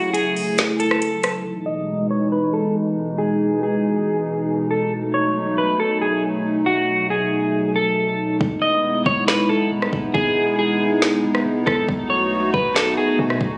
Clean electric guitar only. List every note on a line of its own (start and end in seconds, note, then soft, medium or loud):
0.00 0.12 F#4 loud
0.13 0.75 G#4 medium
0.80 1.41 A4 medium
1.66 2.07 D#5 medium
2.11 2.31 C#5 medium
2.32 2.53 B4 medium
2.53 2.74 A4 medium
3.18 3.60 G#4 loud
3.63 4.67 G#4 medium
4.71 4.92 A4 medium
5.14 5.55 C#5 medium
5.58 5.79 B4 medium
5.80 6.00 A4 medium
6.02 6.22 G#4 medium
6.66 7.07 F#4 loud
7.10 7.72 G#4 medium
7.76 8.37 A4 medium
8.62 9.03 D#5 medium
9.06 9.27 C#5 medium
9.28 9.48 B4 medium
9.49 9.70 A4 medium
10.14 10.55 G#4 loud
10.59 11.63 G#4 medium
11.66 11.87 A4 medium
12.10 12.51 C#5 medium
12.54 12.74 B4 medium
12.75 12.96 A4 medium
12.97 13.18 G#4 medium